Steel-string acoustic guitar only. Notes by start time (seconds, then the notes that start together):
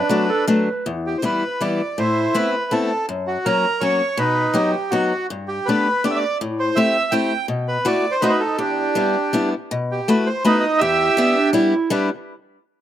0.09 F#3 A3 B3 D4
0.47 F#3 A3 B3 D4
0.86 E2
1.22 E3 G3 B3 E4
1.61 E3 G3 B3 E4
1.98 A2
2.34 A3 B3 C4 E4
2.71 A3 B3 C4 E4
3.09 F#2
3.46 F#3 A#3 C#4 F#4
3.81 F#3 A#3 C#4 F#4
4.17 B2
4.54 F#3 B3 D#4 F#4
4.92 F#3 B3 D#4 F#4
5.30 G2
5.68 A3 B3 D4 G4
6.04 A3 B3 D4 G4
6.41 A2
6.76 A3 C4 E4 G4
7.12 A3 C4 E4 G4
7.48 B2
7.85 A3 B3 E4 F#4
8.22 A3 B3 D#4 F#4
8.58 E2
8.95 G3 B3 D4 E4
9.33 G3 B3 D4 E4
9.71 B2
10.08 A3 B3 E4 F#4
10.45 A3 B3 D#4 F#4
10.81 E2
11.17 G3 B3 D4 E4
11.53 G3 B3 D4 E4
11.90 G3 B3 D4 E4